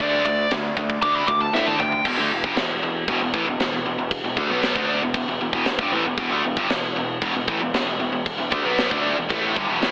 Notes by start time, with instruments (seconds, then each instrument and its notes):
0.00 picked electric bass D2, overdriven electric guitar D3 A3 D4, lead electric guitar D5, kick, ride
0.25 picked electric bass D2, overdriven electric guitar D3 A3, lead electric guitar D5, ride
0.51 picked electric bass D2, overdriven electric guitar D3 A3, snare, ride
0.77 picked electric bass D2, overdriven electric guitar D3 A3, kick, ride
0.90 kick
1.02 picked electric bass D2, overdriven electric guitar D3 A3 D4, lead electric guitar D6, kick, ride
1.16 lead electric guitar B5
1.28 picked electric bass D2, overdriven electric guitar D3 A3, lead electric guitar D6, kick, ride
1.41 lead electric guitar A5
1.53 picked electric bass A2, overdriven electric guitar D3 A3 D4, lead electric guitar E5, snare
1.67 lead electric guitar A5, high tom
1.79 picked electric bass D2, overdriven electric guitar D3 A3, lead electric guitar G5, mid tom
1.92 floor tom
2.05 picked electric bass E1, overdriven electric guitar E2 B2, kick, crash
2.17 picked electric bass D2, overdriven electric guitar D3 A3
2.30 picked electric bass E1, overdriven electric guitar E2 B2
2.44 picked electric bass G1, overdriven electric guitar G2 D3, kick
2.56 picked electric bass E1, overdriven electric guitar E2 B2, snare, crash
2.82 picked electric bass E1, overdriven electric guitar E2 B2
3.08 picked electric bass E1, overdriven electric guitar E2 B2, kick, crash
3.20 picked electric bass E1, overdriven electric guitar E2 B2
3.34 picked electric bass A1, overdriven electric guitar A2 E3, kick
3.46 picked electric bass E1, overdriven electric guitar E2 B2
3.59 picked electric bass E1, overdriven electric guitar E2 B2, snare, crash
3.72 picked electric bass E1, overdriven electric guitar E2 B2
3.84 picked electric bass E1, overdriven electric guitar E2 B2
3.98 picked electric bass E1, overdriven electric guitar E2 B2
4.11 kick, crash
4.24 picked electric bass E1, overdriven electric guitar E2 B2
4.37 picked electric bass D2, overdriven electric guitar D3 A3, kick
4.50 picked electric bass B1, overdriven electric guitar B2 F#3 B3
4.63 snare, crash
4.75 picked electric bass D2, overdriven electric guitar D3 A3 D4, kick
5.00 picked electric bass E1, overdriven electric guitar E2 B2
5.14 picked electric bass E1, overdriven electric guitar E2 B2, kick, crash
5.27 picked electric bass E1, overdriven electric guitar E2 B2
5.40 picked electric bass E1, overdriven electric guitar E2 B2
5.53 picked electric bass E1, overdriven electric guitar E2 B2, kick
5.65 picked electric bass E1, overdriven electric guitar E2 B2, snare, crash
5.79 picked electric bass G1, overdriven electric guitar G2 D3, kick
5.91 picked electric bass A1, overdriven electric guitar A2 E3
6.04 picked electric bass E1, overdriven electric guitar E2 B2
6.18 picked electric bass E1, overdriven electric guitar E2 B2, kick, crash
6.31 picked electric bass D2, overdriven electric guitar D3 A3
6.43 picked electric bass E1, overdriven electric guitar E2 B2
6.57 picked electric bass G1, overdriven electric guitar G2 D3, kick
6.69 picked electric bass E1, overdriven electric guitar E2 B2, snare, crash
6.95 picked electric bass E1, overdriven electric guitar E2 B2
7.22 picked electric bass E1, overdriven electric guitar E2 B2, kick, crash
7.34 picked electric bass E1, overdriven electric guitar E2 B2
7.47 picked electric bass A1, overdriven electric guitar A2 E3, kick
7.60 picked electric bass E1, overdriven electric guitar E2 B2
7.73 picked electric bass E1, overdriven electric guitar E2 B2, snare, crash
7.86 picked electric bass E1, overdriven electric guitar E2 B2
8.00 picked electric bass E1, overdriven electric guitar E2 B2
8.12 picked electric bass E1, overdriven electric guitar E2 B2
8.26 kick, crash
8.37 picked electric bass E1, overdriven electric guitar E2 B2
8.50 picked electric bass D2, overdriven electric guitar D3 A3, kick
8.63 picked electric bass B1, overdriven electric guitar B2 F#3 B3
8.78 snare, crash
8.91 picked electric bass D2, overdriven electric guitar D3 A3 D4, kick
9.16 picked electric bass E1, overdriven electric guitar E2 B2
9.29 picked electric bass A1, overdriven electric guitar A2 E3 A3, kick, crash
9.55 picked electric bass G1, overdriven electric guitar G2 D3, kick
9.68 picked electric bass E1, overdriven electric guitar E2 B2
9.81 picked electric bass A1, overdriven electric guitar A2 E3 A3, snare, crash